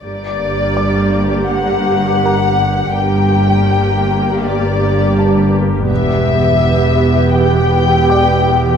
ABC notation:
X:1
M:4/4
L:1/8
Q:1/4=82
K:Gm
V:1 name="Grand piano"
z2 [dd']4 [Bb]2- | [Bb]4 z2 a2- | a4 z2 [dd']2 |]
V:2 name="Violin section"
d4 ^f4 | g4 d3 z | =e4 g4 |]
V:3 name="Viola section"
[B,G]8 | [B,G]8 | [=B,G]8 |]
V:4 name="Cello section" clef=bass
G,,8 | G,,8 | =E,,8 |]
V:5 name="Double bass section" clef=bass
G,,,8 | G,,,8 | =E,,,8 |]
V:6 name="Synth drone" clef=bass
G,,,8 | G,,,8 | =E,,8 |]